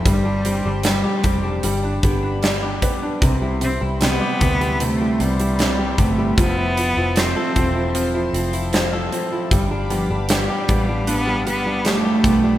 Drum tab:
HH |x-x-x-x-x-x-x-x-|x-x-x-xxx-xxx-x-|x-x-x-x-x-xxx-x-|x-x-x-x-x-x-x-x-|
SD |----o-------o---|----o-------o---|----o-------o---|----o-------o---|
BD |o-----o---o---o-|o-----o-------o-|o-----o---------|o-----o-------o-|